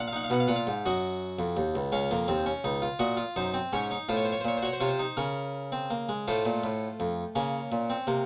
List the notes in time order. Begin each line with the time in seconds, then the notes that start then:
Already playing: A#2
0.07 F5
0.12 D#4 F#5
0.24 F5
0.30 B2 F#5
0.40 F5
0.47 A#2 F4 F#5
0.56 F5
0.67 G#2
0.86 F#2 F#4 D#5
1.39 F2
1.57 D#2
1.75 C#2
1.92 C#2 C#4 F5
2.11 F2 A#3
2.28 D#2 C4
2.46 C#4
2.64 C#2 D#4
2.82 F4
2.99 A#2 F#4 D#5
3.17 F4
3.36 F#2 D#4 C5
3.54 C4
3.73 G#2 C#4 C#5
3.91 D#4
4.09 A2 F4 C5
4.17 C#5
4.24 C5
4.32 C#5
4.40 C5
4.45 A#2 C#5
4.57 C5
4.62 F#4 C#5
4.72 C5
4.80 C3 F4 C#5
4.88 C5
4.99 D#4
5.17 C#3 C#4 A#4
5.72 C4
5.90 A#3
6.09 G#3
6.28 A2 A3 F4 C5
6.45 A#2
6.63 A2
7.00 F2
7.35 C#3 A#3 C#4
7.72 A#2
7.90 C4
8.07 C3 A#3